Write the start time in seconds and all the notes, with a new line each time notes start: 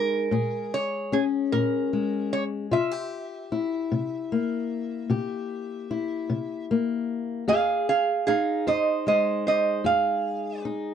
Already playing: G#3 D#4 G#4 A#4
0.31 A#2 G#4
0.74 C#5
1.12 C#4 G#4
1.52 A#2 A#4
1.93 G#3
2.33 C#5
2.71 C3 F4 E5
2.91 G4
3.52 E4
3.92 C3
4.32 A#3
5.10 C3 G4
5.91 E4
6.30 C3
6.71 A#3
7.48 F2 G#4 F5
7.89 G#4 F5
8.27 D#4 G#4 F5
8.67 F2 C5 D#5
9.07 G#3 C5 D#5
9.47 C5 D#5
9.84 F2 G#4 F5
10.65 D#4